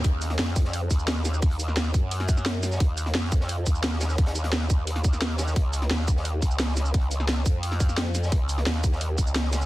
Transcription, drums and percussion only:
0.04 kick, closed hi-hat
0.22 closed hi-hat, shaker
0.30 snare, closed hi-hat
0.39 snare, closed hi-hat
0.48 snare
0.56 kick, closed hi-hat, shaker
0.65 snare
0.73 closed hi-hat
0.91 kick, closed hi-hat, shaker
0.99 shaker
1.07 snare, closed hi-hat
1.16 snare
1.25 snare, closed hi-hat, shaker
1.34 shaker
1.42 kick, closed hi-hat, open hi-hat
1.51 closed hi-hat
1.60 closed hi-hat, shaker
1.68 snare
1.77 snare, closed hi-hat
1.94 kick, closed hi-hat, shaker
2.11 closed hi-hat
2.20 snare, closed hi-hat
2.29 kick, closed hi-hat, shaker
2.37 snare, shaker
2.45 snare, closed hi-hat
2.54 snare
2.63 snare, closed hi-hat, shaker
2.72 snare, shaker
2.80 kick, closed hi-hat
2.98 closed hi-hat, shaker
3.06 snare, closed hi-hat
3.14 snare, closed hi-hat
3.24 snare
3.32 kick, closed hi-hat, shaker
3.41 snare
3.49 closed hi-hat
3.66 kick, closed hi-hat, shaker
3.75 shaker
3.83 snare, closed hi-hat
3.93 snare
4.01 snare, closed hi-hat, shaker
4.10 snare, shaker
4.18 kick, snare, closed hi-hat
4.26 snare, closed hi-hat
4.35 snare, closed hi-hat, shaker
4.44 snare, closed hi-hat
4.53 snare, closed hi-hat
4.61 snare
4.69 kick, snare, closed hi-hat, shaker
4.87 closed hi-hat
4.96 snare, closed hi-hat
5.04 kick, closed hi-hat, shaker
5.13 snare, shaker
5.22 snare, closed hi-hat
5.31 closed hi-hat
5.38 snare, closed hi-hat, shaker
5.47 snare, shaker
5.56 kick, closed hi-hat
5.73 closed hi-hat, shaker
5.82 snare, closed hi-hat
5.91 snare, closed hi-hat
5.99 snare
6.08 kick, closed hi-hat, shaker
6.17 snare
6.25 closed hi-hat
6.42 kick, closed hi-hat, shaker
6.51 shaker
6.59 snare, closed hi-hat
6.68 snare
6.77 snare, closed hi-hat, shaker
6.85 shaker
6.94 kick, closed hi-hat, open hi-hat
7.01 closed hi-hat
7.11 closed hi-hat, shaker
7.20 snare
7.28 snare, closed hi-hat
7.46 kick, closed hi-hat, shaker
7.63 closed hi-hat
7.71 snare, closed hi-hat
7.80 kick, closed hi-hat, shaker
7.89 snare, shaker
7.97 snare, closed hi-hat
8.06 snare
8.15 snare, closed hi-hat, shaker
8.23 snare, shaker
8.32 kick, closed hi-hat
8.49 closed hi-hat, shaker
8.58 snare, closed hi-hat
8.66 snare, closed hi-hat
8.75 snare
8.83 kick, closed hi-hat, shaker
8.92 snare
9.01 closed hi-hat
9.18 kick, closed hi-hat, shaker
9.27 shaker
9.35 snare, closed hi-hat
9.44 snare
9.52 snare, closed hi-hat, shaker
9.61 snare, shaker

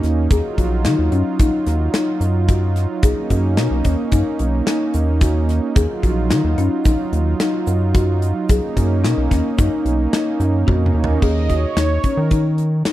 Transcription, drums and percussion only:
0.03 snare, closed hi-hat
0.31 kick, closed hi-hat, shaker
0.58 kick, closed hi-hat
0.85 snare, closed hi-hat
1.12 closed hi-hat
1.39 kick, closed hi-hat, shaker
1.67 snare, closed hi-hat
1.94 snare, closed hi-hat
2.21 closed hi-hat, shaker
2.48 kick, closed hi-hat, shaker
2.76 snare, closed hi-hat
3.03 kick, closed hi-hat, shaker
3.30 kick, closed hi-hat
3.57 snare, closed hi-hat
3.85 kick, closed hi-hat
4.12 kick, closed hi-hat, shaker
4.39 closed hi-hat
4.67 snare, closed hi-hat
4.94 closed hi-hat, shaker
5.21 kick, snare, closed hi-hat, shaker
5.49 snare, closed hi-hat
5.76 kick, closed hi-hat, shaker
6.03 kick, closed hi-hat
6.30 snare, closed hi-hat
6.58 closed hi-hat
6.85 kick, closed hi-hat, shaker
7.13 closed hi-hat
7.40 snare, closed hi-hat
7.67 closed hi-hat, shaker
7.95 kick, closed hi-hat, shaker
8.22 closed hi-hat
8.49 kick, closed hi-hat, shaker
8.77 kick, closed hi-hat
9.04 snare, closed hi-hat
9.31 kick, snare, closed hi-hat
9.59 kick, closed hi-hat, shaker
9.86 closed hi-hat
10.13 snare, closed hi-hat
10.41 closed hi-hat, shaker
10.68 kick, high tom
10.86 mid tom
11.04 floor tom
11.22 kick, crash
11.49 kick, closed hi-hat
11.77 snare, closed hi-hat
12.04 kick, closed hi-hat
12.31 kick, closed hi-hat
12.58 closed hi-hat
12.85 snare, closed hi-hat

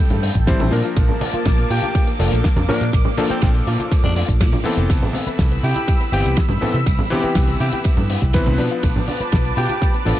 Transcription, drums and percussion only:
0.10 closed hi-hat, low conga
0.23 open hi-hat, muted conga
0.35 kick, closed hi-hat
0.47 kick, snare, closed hi-hat, ride
0.60 closed hi-hat, muted conga, high conga, low conga
0.73 open hi-hat
0.85 closed hi-hat
0.97 kick, closed hi-hat, ride
1.09 low conga
1.21 open hi-hat, muted conga, high conga
1.33 closed hi-hat
1.45 kick, snare, closed hi-hat, ride
1.58 closed hi-hat
1.71 open hi-hat, muted conga
1.83 closed hi-hat, high conga
1.95 kick, closed hi-hat, ride
2.07 closed hi-hat
2.20 open hi-hat
2.32 closed hi-hat
2.44 kick, snare, closed hi-hat, ride
2.57 closed hi-hat, high conga
2.69 open hi-hat, low conga
2.81 closed hi-hat
2.93 kick, closed hi-hat, ride
3.05 low conga
3.18 open hi-hat, muted conga, high conga
3.30 closed hi-hat
3.42 kick, snare, closed hi-hat, ride
3.55 closed hi-hat
3.67 open hi-hat, muted conga
3.80 closed hi-hat, high conga
3.92 kick, closed hi-hat, ride
4.03 closed hi-hat, low conga
4.16 open hi-hat, muted conga
4.28 kick, closed hi-hat
4.41 kick, snare, closed hi-hat, ride
4.53 closed hi-hat, muted conga, high conga, low conga
4.66 open hi-hat
4.78 closed hi-hat
4.90 kick, closed hi-hat, ride
5.02 low conga
5.13 open hi-hat, muted conga, high conga
5.27 closed hi-hat
5.39 kick, snare, closed hi-hat, ride
5.52 closed hi-hat
5.63 open hi-hat, muted conga
5.76 closed hi-hat, high conga
5.88 kick, closed hi-hat, ride
6.01 closed hi-hat
6.13 open hi-hat
6.25 closed hi-hat
6.37 kick, snare, closed hi-hat, ride
6.49 closed hi-hat, high conga
6.62 open hi-hat, low conga
6.75 closed hi-hat
6.86 kick, closed hi-hat, ride
6.99 low conga
7.10 open hi-hat, muted conga, high conga
7.22 closed hi-hat
7.35 kick, snare, closed hi-hat, ride
7.48 closed hi-hat
7.60 open hi-hat, muted conga
7.73 closed hi-hat, high conga
7.84 kick, closed hi-hat, ride
7.97 closed hi-hat, low conga
8.10 open hi-hat, muted conga
8.22 kick, closed hi-hat
8.33 kick, snare, closed hi-hat, ride
8.46 closed hi-hat, muted conga, high conga, low conga
8.58 open hi-hat
8.71 closed hi-hat
8.83 kick, closed hi-hat, ride
8.96 low conga
9.08 open hi-hat, muted conga, high conga
9.21 closed hi-hat
9.32 kick, snare, closed hi-hat, ride
9.45 closed hi-hat
9.57 open hi-hat, muted conga
9.69 closed hi-hat, high conga
9.82 kick, closed hi-hat, ride
9.94 closed hi-hat
10.06 open hi-hat

